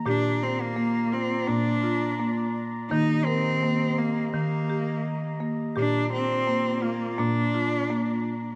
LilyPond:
<<
  \new Staff \with { instrumentName = "Woodwind section" } { \time 4/4 \key bes \major \tempo 4 = 84 << { bes''1~ | bes''1~ | bes''1 | } \\ { <f' d''>1 | <g' ees''>1 | <f' d''>1 | } >> }
  \new Staff \with { instrumentName = "Cello" } { \time 4/4 \key bes \major d'8 c'16 bes8. c'8 d'4. r8 | ees'8 c'4 bes8 bes4. r8 | d'8 c'4 bes8 d'4. r8 | }
  \new Staff \with { instrumentName = "Marimba" } { \time 4/4 \key bes \major << { g'4 bes8 f'8 bes8 f'8 bes4 | bes8 bes'8 bes4 r8 g'4 bes8 | g'4 bes8 f'8 bes8 f'8 bes4 | } \\ { bes,2 bes,2 | ees2 ees2 | bes,2 bes,2 | } >> }
>>